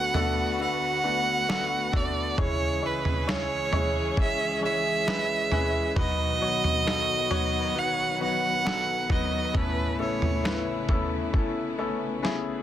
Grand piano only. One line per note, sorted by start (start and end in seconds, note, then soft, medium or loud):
0.00 2.35 D2 medium
0.00 2.35 D3 medium
0.00 0.14 A3 medium
0.00 0.15 B3 medium
0.00 0.15 D4 medium
0.00 0.15 F#4 medium
0.00 0.15 A4 loud
0.14 0.57 A3 loud
0.14 0.57 B3 loud
0.14 0.57 D4 loud
0.14 0.57 F#4 medium
0.14 0.57 A4 loud
0.59 1.02 A3 medium
0.59 1.02 B3 medium
0.59 1.02 D4 medium
0.59 1.02 F#4 medium
0.59 1.02 A4 medium
1.03 1.46 A3 medium
1.03 1.46 B3 medium
1.03 1.46 D4 medium
1.03 1.47 F#4 medium
1.03 1.46 B4 medium
1.48 1.91 A3 medium
1.48 1.91 B3 medium
1.48 1.91 D4 medium
1.48 1.91 F#4 medium
1.48 1.91 A4 medium
1.92 2.35 A3 medium
1.92 2.35 B3 medium
1.92 2.36 D4 medium
1.92 2.36 F#4 medium
1.92 2.36 A4 loud
2.38 5.92 C#2 medium
2.38 5.92 C#3 medium
2.38 2.80 G#3 medium
2.38 2.80 C#4 medium
2.38 2.80 E4 medium
2.38 2.80 G#4 medium
2.38 2.81 C#5 loud
2.82 3.25 G#3 medium
2.82 3.25 C#4 medium
2.82 3.25 E4 medium
2.82 3.25 G#4 medium
2.82 3.25 C#5 medium
3.26 3.70 G#3 medium
3.26 3.70 C#4 medium
3.26 3.70 E4 medium
3.26 3.70 G#4 medium
3.26 3.70 C#5 medium
3.72 4.15 G#3 medium
3.72 4.15 C#4 medium
3.72 4.15 E4 medium
3.72 4.15 G#4 medium
3.72 4.15 C#5 loud
4.17 4.60 G#3 medium
4.17 4.60 C#4 medium
4.17 4.60 E4 medium
4.17 4.60 G#4 medium
4.17 4.60 C#5 medium
4.61 5.04 G#3 medium
4.61 5.04 C#4 medium
4.61 5.05 E4 medium
4.61 5.05 G#4 medium
4.61 5.05 C#5 medium
5.07 5.49 G#3 medium
5.07 5.49 C#4 medium
5.07 5.49 E4 medium
5.07 5.50 G#4 medium
5.07 5.50 B4 medium
5.51 5.94 G#3 medium
5.51 5.94 C#4 medium
5.51 5.94 E4 medium
5.51 5.94 G#4 medium
5.51 5.94 B4 loud
5.96 9.51 B1 medium
5.96 9.51 B2 medium
5.96 6.39 F#3 loud
5.96 6.39 B3 medium
5.96 6.39 D#4 medium
5.96 6.39 F#4 medium
5.96 6.39 B4 loud
6.41 6.84 F#3 medium
6.41 6.84 B3 medium
6.41 6.84 D#4 medium
6.41 6.84 F#4 medium
6.41 6.84 C#5 medium
6.86 7.29 F#3 medium
6.86 7.28 B3 medium
6.86 7.28 D#4 medium
6.86 7.29 F#4 medium
6.86 7.29 A4 medium
7.30 7.73 F#3 loud
7.30 7.73 B3 loud
7.30 7.73 D#4 loud
7.30 7.73 F#4 loud
7.30 7.73 C#5 loud
7.75 8.18 F#3 medium
7.75 8.18 B3 medium
7.75 8.18 D#4 medium
7.75 8.18 F#4 medium
7.75 8.18 B4 medium
8.20 8.63 F#3 medium
8.20 8.63 B3 medium
8.20 8.63 D#4 medium
8.20 8.63 F#4 medium
8.20 8.63 B4 medium
8.65 9.07 F#3 medium
8.65 9.08 B3 medium
8.65 9.08 D#4 medium
8.65 9.08 F#4 medium
8.65 9.08 A4 medium
9.10 9.52 F#3 medium
9.10 9.52 B3 medium
9.10 9.52 D#4 medium
9.10 9.52 F#4 medium
9.10 9.53 B4 medium
9.54 12.63 A1 medium
9.54 12.63 A2 medium
9.54 9.97 A3 loud
9.54 9.97 B3 medium
9.54 9.97 C#4 medium
9.54 9.97 E4 medium
9.54 9.97 A4 loud
9.99 10.42 A3 medium
9.99 10.42 B3 medium
9.99 10.42 C#4 medium
9.99 10.42 E4 medium
9.99 10.42 A4 medium
10.44 10.86 A3 medium
10.44 10.87 B3 medium
10.44 10.87 C#4 medium
10.44 10.87 E4 medium
10.44 10.87 B4 medium
10.89 11.31 A3 medium
10.89 11.31 B3 medium
10.89 11.31 C#4 medium
10.89 11.32 E4 medium
10.89 11.32 A4 loud
11.33 11.76 A3 medium
11.33 11.76 B3 medium
11.33 11.76 C#4 medium
11.33 11.76 E4 medium
11.33 11.76 A4 medium
11.78 12.21 A3 medium
11.78 12.21 B3 medium
11.78 12.21 C#4 medium
11.78 12.21 E4 medium
11.78 12.21 A4 medium
12.22 12.63 A3 medium
12.22 12.63 B3 medium
12.22 12.63 C#4 medium
12.22 12.63 E4 medium
12.22 12.63 G#4 loud